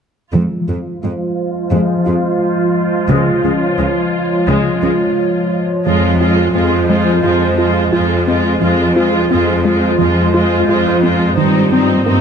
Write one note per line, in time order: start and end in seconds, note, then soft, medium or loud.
0.34 0.42 F2 soft
0.34 5.82 F3 medium
0.34 0.55 F3 medium
0.34 0.66 G#3 soft
0.34 5.82 G#3 medium
0.34 5.62 F4 soft
0.34 5.82 F4 medium
0.34 3.06 C5 medium
0.68 0.77 F2 soft
0.68 0.76 G#3 soft
0.68 0.89 F4 soft
1.03 1.12 F2 soft
1.03 1.11 G#3 soft
1.03 1.24 G#3 soft
1.72 1.80 F2 soft
1.72 1.93 F3 medium
1.72 2.04 G#3 soft
2.06 2.15 F2 soft
2.06 2.14 G#3 soft
2.06 2.27 F4 soft
3.09 3.17 C#2 medium
3.09 3.30 C#3 medium
3.09 3.42 G#3 medium
3.09 5.86 C#5 medium
3.44 3.53 C#2 soft
3.44 3.52 G#3 soft
3.44 3.65 C#4 soft
3.78 3.87 C#2 soft
3.78 4.00 F3 soft
3.78 3.86 G#3 soft
4.48 4.56 C#2 medium
4.48 4.69 C#3 medium
4.48 4.80 G#3 soft
4.82 4.90 C#2 soft
4.82 4.91 G#3 soft
4.82 5.04 C#4 medium
5.86 6.47 F2 soft
5.86 8.58 F3 medium
5.86 6.07 F3 medium
5.86 6.18 G#3 soft
5.86 8.58 G#3 medium
5.86 6.18 F4 soft
5.86 8.58 F4 medium
5.86 8.58 C5 medium
6.19 6.52 G#3 soft
6.19 6.53 F4 soft
6.19 6.41 F4 medium
6.54 7.16 F2 soft
6.54 6.87 G#3 soft
6.54 6.76 C4 soft
6.54 6.87 F4 soft
6.88 7.23 G#3 soft
6.88 7.10 G#3 soft
6.88 7.22 F4 soft
7.23 7.85 F2 soft
7.23 7.45 F3 medium
7.23 7.57 G#3 soft
7.23 7.57 F4 soft
7.58 7.92 G#3 soft
7.58 7.92 F4 soft
7.58 7.79 F4 soft
7.93 8.54 F2 soft
7.93 8.27 G#3 soft
7.93 8.13 F4 medium
7.93 8.26 F4 soft
8.28 8.61 G#3 soft
8.28 8.48 C4 soft
8.28 8.61 F4 soft
8.61 9.23 F2 soft
8.61 8.82 F3 medium
8.61 11.34 F3 medium
8.61 11.34 G#3 medium
8.61 8.95 G#3 soft
8.61 8.95 F4 soft
8.61 11.34 F4 medium
8.61 12.21 C5 medium
8.96 9.30 G#3 soft
8.96 9.17 F4 soft
8.96 9.30 F4 soft
9.31 9.92 F2 soft
9.31 9.63 G#3 soft
9.31 9.52 C4 soft
9.31 9.63 F4 soft
9.64 9.98 G#3 soft
9.64 9.86 G#3 soft
9.64 9.98 F4 soft
9.99 10.61 F2 soft
9.99 10.20 F3 medium
9.99 10.33 G#3 soft
9.99 10.33 F4 soft
10.34 10.68 G#3 soft
10.34 10.55 F4 medium
10.34 10.67 F4 soft
10.68 11.30 F2 soft
10.68 11.01 G#3 soft
10.68 11.02 F4 soft
10.68 10.90 F4 soft
11.03 11.37 G#3 soft
11.03 11.24 C4 soft
11.03 11.37 F4 soft
11.37 11.99 G2 soft
11.37 11.58 D#3 medium
11.37 12.21 G3 medium
11.37 12.21 A#3 medium
11.37 11.71 C4 soft
11.37 12.21 D#4 medium
11.37 11.71 D#4 soft
11.72 12.05 C4 soft
11.72 11.93 C4 medium
11.72 12.05 D#4 soft
12.06 12.21 G2 medium
12.06 12.21 A#3 medium
12.06 12.21 C4 soft
12.06 12.21 D#4 soft